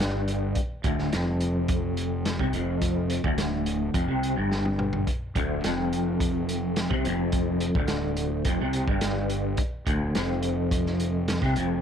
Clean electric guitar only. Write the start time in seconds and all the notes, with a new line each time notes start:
Already playing: G2
0.84 D2
1.13 F2
2.40 C3
2.54 F2
3.24 D2
3.94 F2
4.08 C3
4.37 G2
5.36 D2
5.64 F2
6.90 C3
7.06 F2
7.76 D2
8.46 F2
8.61 C3
8.88 G2
9.87 D2
10.16 F2
11.42 C3
11.57 F2